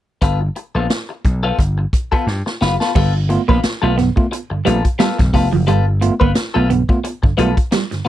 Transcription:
0.21 slap bass G1, clean electric guitar B3 F4 A4, kick, closed hi-hat
0.41 muted clean electric guitar stroke
0.56 muted clean electric guitar stroke, closed hi-hat
0.75 slap bass A#1, clean electric guitar B3 F4 A4
0.90 muted clean electric guitar stroke, snare, closed hi-hat
1.09 muted clean electric guitar stroke
1.25 slap bass B1, kick, closed hi-hat
1.43 clean electric guitar B3 F4 A4
1.58 slap bass G1, muted clean electric guitar stroke, kick, closed hi-hat
1.78 muted clean electric guitar stroke
1.93 kick, closed hi-hat
2.12 clean electric guitar B3 F4 A4, kick
2.27 slap bass G2, muted clean electric guitar stroke, snare
2.46 muted clean electric guitar stroke, snare
2.61 slap bass F#1, clean electric guitar B3 F4 B4, snare
2.80 clean electric guitar B3 F4 A4, snare
2.95 slap bass G1, tine electric piano G2 D3, clean electric guitar G3 B3 F4 A4, kick, crash
3.29 tine electric piano A3 B3 F4, muted clean electric guitar stroke, closed hi-hat
3.48 slap bass A#1, clean electric guitar A#3 B3 F4 B4, kick
3.63 muted clean electric guitar stroke, muted slap bass stroke, snare, closed hi-hat
3.82 slap bass B1, tine electric piano A3 B3 F4, clean electric guitar B3 F4 A4
3.97 tine electric piano G2 D3, clean electric guitar B3, muted clean electric guitar stroke, snare, closed hi-hat
4.16 tine electric piano A3 B3 F4, muted clean electric guitar stroke, kick
4.32 tine electric piano B3 F4, muted clean electric guitar stroke, closed hi-hat
4.50 tine electric piano G2 D3, muted clean electric guitar stroke, muted slap bass stroke
4.65 slap bass A#1, clean electric guitar G3 B3 F4 A4, tine electric piano A3 B3 F4, closed hi-hat
4.85 muted clean electric guitar stroke, kick, closed hi-hat
4.99 clean electric guitar G3 B3 F4 A4, tine electric piano B3 F4, snare, closed hi-hat
5.18 slap bass B1, tine electric piano G2 D3, muted clean electric guitar stroke, kick, snare, closed hi-hat
5.33 slap bass F1, tine electric piano A3 B3 F4, clean electric guitar B3 F4 A4, kick, open hi-hat
5.52 slap bass F#1, clean electric guitar F3, muted clean electric guitar stroke
5.67 slap bass G1, tine electric piano G2 D3, clean electric guitar G3 B3 F4 A4, closed hi-hat
6.01 tine electric piano A3 B3 F4, muted clean electric guitar stroke, closed hi-hat
6.20 slap bass G1, clean electric guitar A#3 B3 F4 B4, tine electric piano F4, kick
6.35 muted clean electric guitar stroke, snare, closed hi-hat
6.54 slap bass B1, tine electric piano A3 B3 F4, clean electric guitar B3 F4 A4
6.69 tine electric piano G2 D3, clean electric guitar B3, muted clean electric guitar stroke, closed hi-hat
6.89 tine electric piano A3 B3 F4, muted clean electric guitar stroke, kick
7.04 muted clean electric guitar stroke, closed hi-hat
7.23 tine electric piano G2 D3, muted clean electric guitar stroke, muted slap bass stroke, kick
7.37 slap bass B1, clean electric guitar G3 B3 F4 A4, tine electric piano A3 B3 F4, closed hi-hat
7.56 muted clean electric guitar stroke, kick, closed hi-hat
7.71 clean electric guitar G3, tine electric piano B3 F4, muted clean electric guitar stroke, snare, closed hi-hat
7.91 tine electric piano G2 D3, muted clean electric guitar stroke, snare, closed hi-hat
8.05 clean electric guitar B3

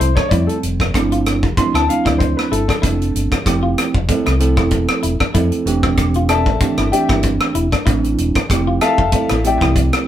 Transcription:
Already playing: grand piano C5
0.00 fingered electric bass C2, clean electric guitar E4, closed hi-hat
0.16 clean electric guitar D4, grand piano C#5, kick, cross-stick
0.29 fingered electric bass F2, tine electric piano F3 G3 A3 C4 F4, clean electric guitar E4, grand piano D5, kick, closed hi-hat
0.47 grand piano A4, closed hi-hat
0.63 fingered electric bass F1, closed hi-hat
0.80 kick, cross-stick
0.94 fingered electric bass G1, tine electric piano F3 A3 C4 D4 E4, kick, cross-stick, closed hi-hat
1.12 clean electric guitar F4, closed hi-hat
1.26 cross-stick, closed hi-hat
1.43 fingered electric bass F1, kick
1.57 tine electric piano F3 A3 C4 D4 E4, grand piano C6, kick, closed hi-hat
1.74 fingered electric bass D2, clean electric guitar E4, grand piano A5, cross-stick, closed hi-hat
1.89 tine electric piano F3 A3 C4 D4 E4, grand piano F5, closed hi-hat
2.05 fingered electric bass D2, clean electric guitar E4, grand piano D5, kick, cross-stick, closed hi-hat
2.18 grand piano C5, kick, closed hi-hat
2.37 grand piano B4, cross-stick
2.51 fingered electric bass G1, clean electric guitar E4, grand piano A4, closed hi-hat
2.68 clean electric guitar D4, grand piano A4, kick, cross-stick, closed hi-hat
2.82 fingered electric bass F1, tine electric piano F3 A3 C4 D4 F4, clean electric guitar E4, kick, closed hi-hat
3.02 closed hi-hat
3.15 fingered electric bass G1, closed hi-hat
3.32 kick, cross-stick, closed hi-hat
3.46 fingered electric bass F1, tine electric piano F3 A3 C4 E4 G4, kick, cross-stick, closed hi-hat
3.63 clean electric guitar F4
3.78 cross-stick, closed hi-hat
3.94 fingered electric bass F1, kick
4.08 tine electric piano F3 A3 C4 E4 A4, kick, closed hi-hat
4.26 fingered electric bass C2, clean electric guitar E4, cross-stick, closed hi-hat
4.40 tine electric piano F3 A3 C4 E4 A4, closed hi-hat
4.57 fingered electric bass E1, clean electric guitar E4, kick, cross-stick
4.71 kick, closed hi-hat
4.88 cross-stick, closed hi-hat
5.03 fingered electric bass E1, clean electric guitar E4, closed hi-hat
5.20 clean electric guitar D4, kick, cross-stick
5.34 fingered electric bass F2, tine electric piano F3 A3 C4 E4 A4, clean electric guitar E4, kick, closed hi-hat
5.52 closed hi-hat
5.65 fingered electric bass E1, tine electric piano E3 A3 C4 D4 G4, closed hi-hat
5.83 kick, cross-stick
5.97 fingered electric bass E1, kick, cross-stick, closed hi-hat
6.14 clean electric guitar F4, closed hi-hat
6.29 grand piano A4 D5 E5 A5, cross-stick, closed hi-hat
6.46 fingered electric bass A1, kick
6.60 tine electric piano E3 A3 C4 D4 G4, muted fingered electric bass stroke, kick, closed hi-hat
6.77 fingered electric bass G1, clean electric guitar E4, cross-stick, closed hi-hat
6.92 tine electric piano E3 A3 C4 D4 G4, grand piano G4 D5 E5 G5, closed hi-hat
7.09 fingered electric bass G1, clean electric guitar E4, kick, cross-stick, closed hi-hat
7.23 kick, closed hi-hat
7.41 cross-stick
7.55 fingered electric bass E1, clean electric guitar E4, closed hi-hat
7.72 clean electric guitar D4, kick, cross-stick, closed hi-hat
7.86 fingered electric bass A1, tine electric piano E3 A3 C4 D4 E4, clean electric guitar E4, kick, closed hi-hat
8.04 closed hi-hat
8.18 fingered electric bass E1, closed hi-hat
8.35 kick, cross-stick, closed hi-hat
8.50 fingered electric bass F1, tine electric piano F3 A3 C4 E4 G4, kick, cross-stick, closed hi-hat
8.67 clean electric guitar F4
8.81 grand piano A4 E5 F5 A5, cross-stick, closed hi-hat
8.98 fingered electric bass F1, kick
9.12 tine electric piano F3 A3 C4 E4 A4, kick, closed hi-hat
9.29 fingered electric bass A1, clean electric guitar E4, cross-stick, closed hi-hat
9.44 tine electric piano F3 A3 C4 E4 G4, grand piano G4 D5 E5 G5, closed hi-hat
9.61 fingered electric bass C2, clean electric guitar E4, kick, cross-stick
9.76 kick, closed hi-hat
9.93 cross-stick, closed hi-hat

